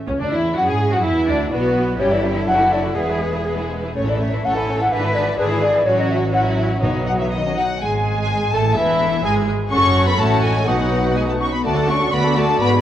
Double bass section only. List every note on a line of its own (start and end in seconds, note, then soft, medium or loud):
0.08 0.13 C#2 medium
0.21 0.26 D2 soft
0.33 0.57 E2 soft
0.57 0.69 F#2 medium
0.69 0.93 G#2 medium
0.93 1.05 F#2 medium
1.05 1.29 E2 medium
1.29 1.52 D2 medium
1.52 1.99 B1 medium
2.00 2.44 G1 medium
2.47 2.97 F#1 medium
2.96 3.74 E1 soft
3.96 4.39 A1 soft
4.45 4.86 A1 soft
4.92 5.34 G#1 medium
5.39 5.81 G#1 medium
5.86 6.78 A1 medium
6.82 7.61 B1 soft
7.82 8.50 G#1 medium
8.53 8.76 A1 medium
8.77 9.24 E1 medium
9.24 9.47 G#1 medium
9.71 10.15 F#1 medium
10.19 10.67 A1 medium
10.67 11.45 B1 soft
11.66 12.08 D2 medium
12.13 12.55 D2 soft
12.61 12.81 G#1 medium